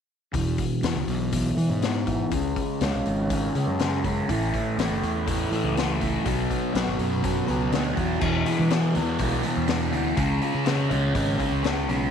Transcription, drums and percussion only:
0.34 kick, open hi-hat
0.58 kick, open hi-hat
0.83 snare, open hi-hat
1.08 open hi-hat
1.32 kick, open hi-hat
1.58 open hi-hat
1.82 snare, open hi-hat
2.07 kick, open hi-hat
2.31 kick, open hi-hat
2.56 kick, open hi-hat
2.81 snare, open hi-hat
3.05 open hi-hat
3.30 kick, open hi-hat
3.55 open hi-hat
3.79 snare, open hi-hat
4.04 kick, open hi-hat
4.29 kick, open hi-hat
4.54 kick, open hi-hat
4.79 snare, open hi-hat
5.03 open hi-hat
5.27 kick, open hi-hat
5.53 open hi-hat
5.77 snare, open hi-hat
6.01 kick, open hi-hat
6.26 kick, open hi-hat
6.50 kick, open hi-hat
6.75 snare, open hi-hat
6.99 open hi-hat
7.24 kick, open hi-hat
7.48 open hi-hat
7.72 snare, open hi-hat
7.97 kick, open hi-hat
8.21 kick, crash
8.46 open hi-hat
8.70 snare, open hi-hat
8.95 open hi-hat
9.19 kick, open hi-hat
9.43 open hi-hat
9.68 snare, open hi-hat
9.93 open hi-hat
10.17 kick, open hi-hat
10.42 open hi-hat
10.66 snare, open hi-hat
10.91 open hi-hat
11.15 kick, open hi-hat
11.40 kick, open hi-hat
11.64 snare, open hi-hat
11.89 open hi-hat

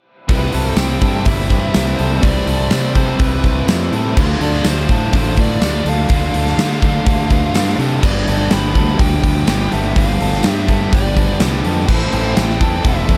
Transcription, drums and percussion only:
0.29 kick, open hi-hat
0.53 open hi-hat
0.76 snare, open hi-hat, tambourine
1.01 kick, open hi-hat
1.25 kick, open hi-hat
1.50 kick, open hi-hat
1.74 snare, open hi-hat, tambourine
1.99 open hi-hat
2.23 kick, open hi-hat
2.47 open hi-hat
2.71 snare, open hi-hat, tambourine
2.95 kick, open hi-hat
3.19 kick, open hi-hat
3.44 kick, open hi-hat
3.68 snare, open hi-hat, tambourine
3.93 open hi-hat
4.17 kick, crash
4.41 open hi-hat
4.53 snare
4.64 snare, open hi-hat, tambourine
4.89 kick, open hi-hat
5.13 kick, open hi-hat
5.37 kick, open hi-hat
5.62 snare, open hi-hat, tambourine
5.86 open hi-hat
6.09 kick, open hi-hat
6.34 open hi-hat
6.47 snare
6.59 snare, open hi-hat, tambourine
6.71 snare
6.82 kick, open hi-hat
7.06 kick, open hi-hat
7.30 kick, open hi-hat
7.54 snare, open hi-hat, tambourine
7.80 open hi-hat
8.03 kick, crash
8.27 open hi-hat
8.51 snare, open hi-hat, tambourine
8.75 kick, open hi-hat
8.99 kick, open hi-hat
9.24 kick, open hi-hat
9.47 snare, open hi-hat, tambourine
9.72 open hi-hat
9.96 kick, open hi-hat
10.21 open hi-hat
10.33 snare
10.43 snare, open hi-hat, tambourine
10.68 kick, open hi-hat
10.93 kick, open hi-hat
11.17 kick, open hi-hat
11.40 snare, open hi-hat, tambourine
11.64 open hi-hat
11.88 kick, crash
12.12 open hi-hat
12.37 snare, open hi-hat, tambourine
12.50 snare
12.61 kick, open hi-hat
12.84 kick, open hi-hat
13.09 kick, open hi-hat

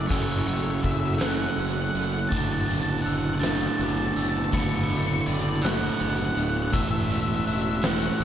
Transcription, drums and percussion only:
0.10 kick, closed hi-hat
0.48 closed hi-hat
0.84 kick, closed hi-hat
1.21 snare, closed hi-hat
1.59 closed hi-hat
1.95 closed hi-hat
2.32 kick, closed hi-hat
2.69 closed hi-hat
3.06 closed hi-hat
3.43 snare, closed hi-hat
3.79 closed hi-hat
4.17 closed hi-hat
4.53 kick, closed hi-hat
4.90 closed hi-hat
5.27 closed hi-hat
5.65 snare, closed hi-hat
6.00 closed hi-hat
6.37 closed hi-hat
6.73 kick, closed hi-hat
7.10 closed hi-hat
7.47 closed hi-hat
7.84 snare, closed hi-hat

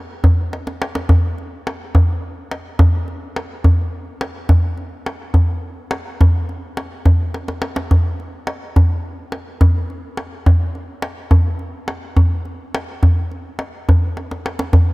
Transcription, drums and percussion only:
0.24 tombak dum
0.53 tombak tek
0.67 tombak ka
0.82 tombak tek
0.95 tombak ka
1.09 tombak dum
1.38 tombak ka
1.67 tombak tek
1.95 tombak dum
2.51 tombak tek
2.79 tombak dum
3.08 tombak ka
3.36 tombak tek
3.64 tombak dum
4.21 tombak tek
4.49 tombak dum
4.77 tombak ka
5.06 tombak tek
5.34 tombak dum
5.91 tombak tek
6.21 tombak dum
6.49 tombak ka
6.77 tombak tek
7.05 tombak dum
7.34 tombak tek
7.48 tombak ka
7.62 tombak tek
7.76 tombak ka
7.91 tombak dum
8.20 tombak ka
8.47 tombak tek
8.76 tombak dum
9.32 tombak tek
9.61 tombak dum
9.90 tombak ka
10.17 tombak tek
10.46 tombak dum
10.75 tombak ka
11.02 tombak tek
11.31 tombak dum
11.59 tombak ka
11.88 tombak tek
12.16 tombak dum
12.45 tombak ka
12.75 tombak tek
13.03 tombak dum
13.31 tombak ka
13.59 tombak tek
13.89 tombak dum
14.17 tombak tek
14.31 tombak ka
14.46 tombak tek
14.59 tombak ka
14.73 tombak dum

